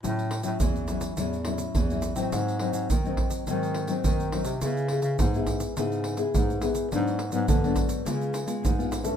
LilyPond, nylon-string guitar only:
\new Staff \with { instrumentName = "Nylon-string guitar" } { \time 4/4 \key a \major \tempo 4 = 105 << { <fis cis' e'>8 r16 <fis cis' e'>8. <fis cis' e'>8 <fis cis' e'>16 r16 <fis cis' e'>8. <fis cis' e'>8 <fis c' dis'>16~ | <fis c' dis'>8 <fis bis dis'>8 r16 <fis bis dis'>8. <fis bis dis'>8. <fis bis dis'>8. <fis bis dis'>16 r16 | <b e' gis'>8 <b e' gis'>8. <b e' gis'>8. <b e' gis'>8. <b e' gis'>8. <b e' gis'>8 | <fis b d'>8 r16 <fis b d'>8 <fis b d'>8. <gis b eis'>8. <gis b eis'>8 <gis b eis'>8 <cis' e' a'>16 | } \\ { a,4 e4 a,4 e4 | gis,4 dis4 gis,4 dis4 | cis4 gis,4 cis4 gis,4 | gis,4 gis,4 cis4 gis,4 | } >> }